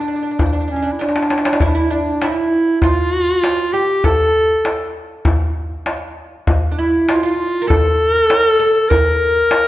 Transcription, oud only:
0.01 0.07 D4 soft
0.08 0.15 D4 soft
0.16 0.22 D4 soft
0.23 0.30 D4 soft
0.31 0.38 D4 soft
0.39 0.44 D4 soft
0.46 0.52 D4 soft
0.53 0.59 D4 soft
0.60 0.66 D4 soft
0.68 0.75 D4 soft
0.76 0.81 D4 soft
0.82 0.90 D4 soft
0.99 1.44 D4 medium
1.46 1.61 D4 medium
1.61 1.74 E4 medium
1.75 1.90 E4 medium
1.90 2.21 D4 medium
2.22 2.83 E4 medium
2.83 3.73 F4 medium
3.73 4.03 G4 medium
4.04 4.91 A4 medium
6.72 6.78 D4 soft
6.79 7.09 E4 medium
7.09 7.22 F4 medium
7.23 7.61 F4 medium
7.62 7.67 A#4 medium
7.67 8.58 A4 medium
8.59 8.90 A4 medium
8.90 9.68 A#4 medium

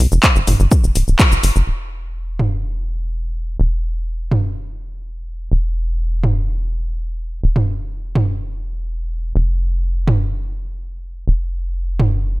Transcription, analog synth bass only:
0.12 0.19 F1 medium
0.36 0.43 G1 medium
0.48 0.55 G1 loud
0.60 0.67 G1 medium
0.84 0.91 F1 medium
0.95 1.03 D1 loud
1.08 1.15 D1 medium
1.32 1.39 G1 medium
1.43 1.51 G1 loud
1.56 1.63 G1 medium
1.67 3.57 E1 medium
3.60 5.49 E1 medium
5.52 7.41 E1 medium
7.43 9.33 E1 medium
9.36 11.25 F1 medium
11.28 12.40 F1 medium

